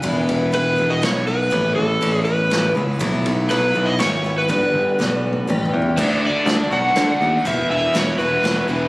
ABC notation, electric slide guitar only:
X:1
M:3/4
L:1/16
Q:1/4=121
K:Alyd
V:1 name="Electric slide guitar"
z4 B3 d c2 B2- | B2 A4 B4 z2 | z4 B3 d c3 B | B8- B2 z2 |
[K:Dlyd] z2 d4 f6 | e2 e2 c2 B4 z2 |]